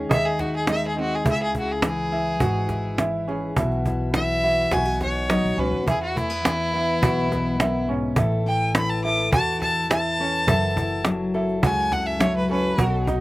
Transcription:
Already playing: D#3 G#3 D#4 G#4
0.09 D#2 D#3 D#4 E5, cajon bass
0.26 G#4
0.39 D#4 F#4, cajon bass, cajon slap
0.56 G#4
0.67 G#3 D#4 E5, cajon slap
0.87 G#4
0.97 C4 D#4, cajon slap
1.01 F#4
1.15 G#4
1.25 C#2 C#3 E4 G#4, cajon bass
1.30 E5
1.40 G#4, cajon slap
1.55 E4, cajon bass
1.59 F#4
1.69 G#4, cajon slap
1.82 E3, cajon slap
1.87 G#4
2.11 E4, cajon slap
2.26 cajon slap
2.40 G#1 G#2 F#4, cajon bass
2.69 E4, cajon bass, cajon slap
2.98 E3 E4, cajon slap
3.27 C#4 G#4, cajon slap
3.56 B1 B2 E4 F#4, cajon bass
3.71 cajon slap
3.86 E4, cajon bass
4.14 E3 E5, cajon slap
4.43 E4 F#4, cajon slap
4.58 cajon slap
4.71 B1 B2 E4 F#4 G#5, cajon bass, cajon slap
4.85 F#4
5.01 D#4 C#5, cajon bass, cajon slap
5.29 F#3 D#4, cajon slap
5.44 B1
5.57 C#2 C#4 F#4 B4, cajon slap
5.72 D#2
5.86 E2 E4 G#4, cajon bass
6.02 F#4, cajon slap
6.16 A3 E4, cajon bass
6.30 B3, cajon slap
6.45 E3, cajon slap
6.73 B3 E4, cajon slap
6.89 cajon slap
7.02 B1 B2 F#4, cajon bass
7.32 B3, cajon bass, cajon slap
7.59 F#2 E4, cajon slap
7.88 G#2 C#4, cajon slap
8.16 A1 A2 E4 A4, cajon bass
8.32 cajon slap
8.46 E4 G5
8.61 cajon slap
8.75 E3 B5, cajon slap
8.90 A5
9.04 E4 A4 D6, cajon slap
9.18 cajon slap
9.32 E2 E3 F#4 A5, cajon bass
9.62 E4 A5, cajon bass, cajon slap
9.90 E3 E4 A5, cajon slap
10.19 C#4 A4, cajon slap
10.47 F#1 F#2 E4 A4, cajon bass
10.63 cajon slap
10.76 E4, cajon bass
10.91 cajon slap
11.05 F#3, cajon slap
11.34 E4 A4, cajon slap
11.49 cajon slap
11.62 C#2 C#3 F#4 G#5, cajon bass
11.92 E4 F#5, cajon bass, cajon slap
12.06 E5
12.19 F#3 E4 C#5, cajon slap
12.36 B4
12.49 C#4 A4 B4, cajon slap
12.77 B1 B2 F#4, cajon bass
13.07 D#4, cajon bass

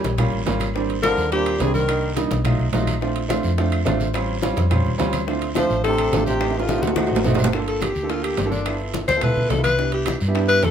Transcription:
Already playing: C#4 G4
0.04 A#1, high bongo, high conga, high timbale, short guiro
0.18 G3 A#3 C#4 F4, high bongo, high conga, low conga, high timbale, long guiro, claves
0.32 A1, high bongo, high conga
0.46 G#1 G3 A#3 C#4 F4, high bongo, low bongo, high conga, high timbale, low timbale, short guiro
0.60 high conga, high timbale, short guiro, claves
0.74 G3 A#3 C4 D4, high bongo, high conga, long guiro
0.89 high bongo, high conga, high timbale
1.02 D3 G3 A#3 C4 F4 A#4, high bongo, high conga, high timbale, low timbale, short guiro, claves
1.17 D#2, high bongo, high conga, short guiro
1.31 A#2 G3 A#3 C4 D4 G4, high bongo, high conga, high timbale, long guiro
1.46 high bongo, high conga, high timbale, claves
1.59 C2 G3 A#3 C4 D4 G#4, high bongo, low bongo, high conga, high timbale, low timbale, short guiro
1.63 C3
1.74 D#3 A#4, high conga, short guiro
1.88 G3 A#3 D4 D#4, high bongo, high timbale, long guiro, claves
2.03 high bongo, high conga
2.15 G3 A#3 D4 D#4, high bongo, high conga, high timbale, low timbale, short guiro
2.31 B1, high bongo, high conga, high timbale, short guiro
2.44 F#3 A3 D#4 F4, high bongo, high conga, low conga, high timbale, long guiro, claves
2.59 B1, high bongo, high conga
2.73 A#1 F#3 A3 D#4 F4, high bongo, low bongo, high conga, high timbale, low timbale, short guiro
2.87 high conga, high timbale, short guiro, claves
3.01 A3 C4 D4 F4, high bongo, high conga, long guiro
3.16 high bongo, high conga, high timbale
3.29 A3 C4 D4 F4, high bongo, high conga, high timbale, low timbale, short guiro, claves
3.43 F2, high bongo, high conga, short guiro
3.58 A3 C4 D4 F4, high bongo, high conga, high timbale, long guiro
3.72 high bongo, high conga, high timbale, claves
3.85 A1 A3 C4 D4 F4, high bongo, low bongo, high conga, high timbale, low timbale, short guiro
4.00 high conga, short guiro
4.14 G3 C4 C#4 F4, high bongo, high conga, high timbale, long guiro, claves
4.29 high bongo, high conga
4.41 G3 C4 C#4 F4, high bongo, high conga, high timbale, low timbale, short guiro
4.56 F2, high bongo, high conga, high timbale, short guiro
4.70 G3 C4 C#4 F4, high bongo, high conga, low conga, high timbale, long guiro, claves
4.86 D#2, high bongo, high conga, low conga
4.98 D2 G3 C4 C#4 F4, high bongo, low bongo, high conga, high timbale, low timbale, short guiro
5.13 high conga, high timbale, short guiro, claves
5.27 A3 C4 D4 F4, high bongo, high conga, long guiro
5.42 high bongo, high conga, high timbale
5.55 F3 A3 C4 D4 F4 C5, high bongo, high conga, high timbale, low timbale, short guiro, claves
5.70 A1, high bongo, high conga, short guiro
5.84 C3 A3 C4 D4 G4 A4, high bongo, high conga, high timbale, long guiro
5.98 high bongo, high conga, high timbale, claves
6.12 A1 A3 C4 D4 F4, high bongo, low bongo, high conga, high timbale, low timbale, short guiro
6.26 C3 G4, high conga, short guiro
6.41 A3 C4 D#4 G4, high bongo, high conga, high timbale, long guiro, claves
6.50 high timbale
6.55 high bongo, high conga
6.59 A2 F4, high timbale
6.68 A3 C4 D#4 G4, high bongo, high conga, short guiro
6.78 high timbale
6.82 D2 A2 F#4, high bongo, high conga, short guiro
6.87 low timbale
6.96 A3 C4 D#4 F#4, high bongo, high conga, low timbale, long guiro, claves
7.07 low timbale
7.11 A1
7.16 low bongo, low timbale
7.24 G1 A3 C4 D#4 F#4, low bongo, low conga, short guiro
7.35 low bongo, low timbale, short guiro
7.40 low conga, claves
7.44 low bongo, low timbale
7.53 A#3 D4 F4 A4, high bongo, long guiro
7.67 A4, high bongo, high conga, high timbale
7.81 G4, high bongo, high conga, high timbale, low timbale, short guiro, claves
7.95 D2, high bongo, high conga, short guiro
8.02 A#3 D4 F4 A4
8.09 A#3 D4 F4 A4, high bongo, high conga, high timbale, long guiro
8.23 G4, high bongo, high conga, high timbale, claves
8.37 G1, high bongo, low bongo, high conga, high timbale, low timbale, short guiro
8.45 A#3 D4 F4 A4
8.51 D4, high conga, short guiro
8.66 B3 E4 F4 A4, high bongo, high conga, high timbale, long guiro, claves
8.80 high bongo, high conga
8.94 high bongo, high conga, high timbale, low timbale, short guiro
9.08 D2 C5, high bongo, high conga, high timbale, short guiro
9.15 B3 E4 F4 A4
9.21 B3 E4 F4 A4 B4, high bongo, high conga, low conga, high timbale, long guiro, claves
9.36 D2, high bongo, high conga, low conga
9.49 C2 A4, high bongo, low bongo, high conga, high timbale, low timbale, short guiro
9.57 B3 E4 F4 B4
9.63 B4, high conga, high timbale, short guiro, claves
9.78 B3 D4 E4 G4, high bongo, high conga, long guiro
9.92 G4, high bongo, high conga, high timbale
10.06 high bongo, high conga, high timbale, low timbale, short guiro, claves
10.21 G2, high bongo, high conga, short guiro
10.27 B3 D4 E4 G4
10.34 B3 D4 E4 G4, high bongo, high conga, high timbale, long guiro
10.48 B4, high bongo, high conga, high timbale, claves
10.63 F2 A4, high bongo, low bongo, high conga, high timbale, low timbale, short guiro

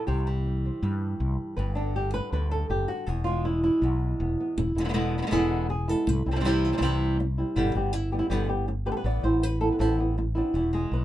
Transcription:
0.07 C2 C3 G4
0.27 E3
0.46 G3
0.65 C4
0.83 G2
1.20 C2
1.57 G1 G2 B4
1.75 D3 D4
1.96 G4
2.14 B4
2.32 D2 D3 B4
2.51 A4
2.70 F#1 G4
2.88 F#4
3.06 E1 E2 G#4
3.24 G#3 F4
3.45 E4
3.64 E4
3.82 B1 E2
4.20 E1 B3
4.40 B3
4.58 E1 E4, muted nylon-string guitar stroke
4.75 E1 G#3 B3 E4 F4
4.80 D3 B3 E4
4.84 D3 G#3 B3 E4
4.89 D3 G#3 B3 E4
4.94 B2 D3 G#3 B3 E4
5.18 D3 G#3 B3 E4
5.22 D3 G#3 B3 E4
5.27 D3 G#3 B3 E4
5.31 E1 B2 D3 G#3 B3 E4 G#4
5.69 G#4, muted nylon-string guitar stroke
5.88 G#3 B3 E4 A4
6.07 C2 B4, muted nylon-string guitar stroke
6.26 C2 G3 C4 E4
6.31 E3 G3 C4 E4 A4
6.36 E3 G3 C4 E4
6.40 E3 G3 C4 E4
6.44 C3 E3 G3 C4 E4 G4
6.65 F4
6.72 E3 G3 C4 E4
6.78 C2 E3 G3 C4 E4
6.82 C3 E3 G3 C4 E4
7.20 muted nylon-string guitar stroke
7.38 G3 C4 E4
7.56 G1 B2 D3 G3 B3 E4 G4
7.75 G1 G3 B3 F#4 G4
7.93 E4, muted nylon-string guitar stroke
8.12 G3 B3 G4
8.19 E4
8.30 G1 B2 D3 G3 B3 G4
8.49 G3 B3 G4
8.68 muted nylon-string guitar stroke
8.86 G3 B3 G4 B4
8.92 A4
8.97 B4
9.04 A1 E3 B3 D5
9.23 A1 B3 C4 E4 C5
9.43 B4, muted nylon-string guitar stroke
9.61 B3 C4 E4 A4
9.72 B4
9.79 A1 E3 B3 C4 E4 A4
9.99 B3 C4 E4
10.18 muted nylon-string guitar stroke
10.35 B3 C4 D4 E4
10.54 E1 E2 E4
10.73 G#3 G#4
10.92 B1 B4

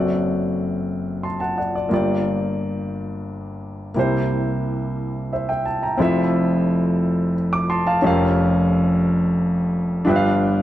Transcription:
Already playing: F#1 F#2 C4 F#4 A4 D5
1.23 A5 C6
1.40 F#5 A5
1.58 D5 F#5
1.75 D5
1.89 G1 G2 A#3 F4 G4
1.94 D5
3.94 C2 C3 A#3 E4 G4
3.99 C5
5.33 C5 E5
5.49 E5 G5
5.66 A5
5.83 G5 A#5
5.97 F1 F2 C4 E4 F4 A4
6.02 E5
7.53 D6
7.70 A5 C6
7.87 F5 A5
8.02 F1 F2 C#4 F4 G4 A#4
8.07 F5
10.05 G1 G2 D4 F4 G4 B4
10.10 E5
10.16 F5

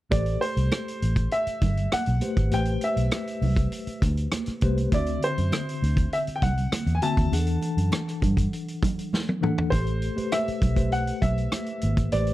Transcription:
0.10 A1 A3 G4 A4 C5 D5, kick, closed hi-hat, muted conga
0.26 closed hi-hat
0.41 C5, closed hi-hat
0.57 C2, closed hi-hat
0.71 cross-stick, closed hi-hat, high conga
0.88 closed hi-hat
1.02 A1, closed hi-hat
1.16 kick, closed hi-hat
1.31 E5, closed hi-hat
1.47 muted fingered electric bass stroke, closed hi-hat
1.62 G1, kick, closed hi-hat, muted conga, low conga
1.77 closed hi-hat
1.92 F#5, muted fingered electric bass stroke, cross-stick, closed hi-hat, high conga
2.06 B1, closed hi-hat
2.21 A3 G4 B4 C5, closed hi-hat, high conga
2.37 G#1, kick, closed hi-hat
2.51 A1 A3 G4 B4 C5 G5, closed hi-hat, muted conga
2.65 closed hi-hat
2.81 E5, closed hi-hat, muted conga
2.97 B1, closed hi-hat
3.11 cross-stick, closed hi-hat, high conga
3.27 closed hi-hat
3.42 C2, open hi-hat, low conga
3.56 kick, closed hi-hat
3.72 closed hi-hat
3.87 muted fingered electric bass stroke, closed hi-hat
4.02 D2, kick, closed hi-hat, muted conga
4.17 closed hi-hat
4.32 cross-stick, closed hi-hat, high conga
4.46 muted fingered electric bass stroke, cross-stick, closed hi-hat
4.61 C2 A3 G4 B4 C5, kick, closed hi-hat, high conga
4.77 closed hi-hat
4.92 D2 D3 C4 F#4 D5 E5, kick, closed hi-hat, muted conga
5.06 closed hi-hat
5.22 C5, closed hi-hat, muted conga
5.38 F#2, closed hi-hat
5.52 cross-stick, closed hi-hat, high conga
5.69 closed hi-hat
5.82 D2, closed hi-hat
5.97 kick, closed hi-hat
6.13 E5, closed hi-hat
6.27 muted fingered electric bass stroke, closed hi-hat
6.36 G5
6.42 C2 F#5, kick, closed hi-hat, muted conga, low conga
6.57 closed hi-hat
6.72 cross-stick, closed hi-hat, high conga
6.87 E2, closed hi-hat
6.95 G#5
7.02 D3 C4 F#4 E5 A5, closed hi-hat, high conga
7.17 D#2, kick, closed hi-hat
7.32 E2 E3 D4 G#4 F#5, closed hi-hat, muted conga
7.39 A4
7.47 closed hi-hat
7.62 closed hi-hat, muted conga
7.77 F#2, closed hi-hat
7.92 cross-stick, closed hi-hat, high conga
8.08 cross-stick, closed hi-hat
8.22 G2, kick, closed hi-hat, low conga
8.37 kick, closed hi-hat
8.53 closed hi-hat
8.68 closed hi-hat
8.83 kick, closed hi-hat, muted conga, low conga
8.99 closed hi-hat
9.13 snare, high conga
9.29 high tom
9.41 E3 D4 A4 F#5, mid tom, high conga
9.58 floor tom
9.70 A1 A3 G4 A4 C5, kick, closed hi-hat, muted conga
9.87 closed hi-hat
10.02 closed hi-hat
10.16 A3 G4 B4 C5, muted fingered electric bass stroke, closed hi-hat
10.32 E5, cross-stick, closed hi-hat, high conga
10.48 muted fingered electric bass stroke, closed hi-hat
10.62 B1, kick, closed hi-hat, low conga
10.75 A3 G4 B4 C5, kick, closed hi-hat
10.92 F#5, closed hi-hat
11.07 closed hi-hat
11.22 B1 E5, kick, closed hi-hat, muted conga, low conga
11.38 closed hi-hat
11.52 cross-stick, closed hi-hat, high conga
11.66 closed hi-hat
11.81 G#1, closed hi-hat, high conga
11.97 kick, closed hi-hat
12.12 A1 A3 G4 B4 C5 D5, closed hi-hat, muted conga
12.27 closed hi-hat

